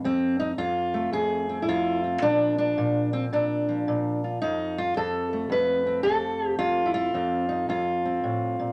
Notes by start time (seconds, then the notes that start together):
0.04 F2 C4
0.40 D#4
0.58 F2 F4
0.94 A3
1.12 F2 G#4
1.49 C4
1.62 E4
1.68 F2 F4
2.04 C4
2.22 A#2 F3 D4
2.58 D4
2.78 A#2
3.13 C4
3.33 A#2 D4
3.69 F3
3.88 A#2
4.24 F4
4.42 F2 D#4
4.78 F4
4.97 F2 A4
5.33 A3
5.50 F2 B4
5.87 C4
6.03 F2 A4
6.47 G4
6.59 F2 F4
6.86 E4
6.94 F4
7.14 F2 C4
7.49 D#4
7.69 F2 F4
8.05 C4
8.24 A2
8.59 A#2